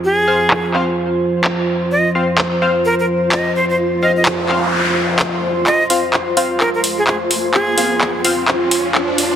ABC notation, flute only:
X:1
M:4/4
L:1/16
Q:"Swing 16ths" 1/4=128
K:Fm
V:1 name="Flute"
A6 z8 z2 | e z6 z B B z2 e2 c c | z2 e e z12 | e z6 z B B z A A z3 |
A6 z8 z2 |]